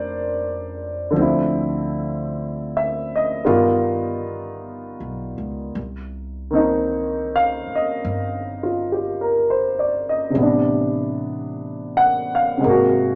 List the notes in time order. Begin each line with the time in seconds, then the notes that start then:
Already playing: F1 D3 F3 A#3 D4 F4 A#4 C5 D5
1.11 D3 F3
1.16 D2 C4
1.21 E4
2.77 E5
3.16 D#5
3.44 G1 D#3 G3 B3 F4
5.00 B1
5.38 C#2
5.75 C2
6.51 D#3 A#3 C4
6.55 D#4
7.36 F5
7.67 muted upright bass stroke
7.75 D#5
8.05 G1
8.63 F4
8.92 G4
9.21 A#4
9.50 C5
9.79 D5
10.09 D#5
10.30 C3 G3
10.35 A1 B3
10.42 D4
11.97 F#5
12.35 F5
12.58 C3 G#3
12.64 G#1 A#3
12.69 F#4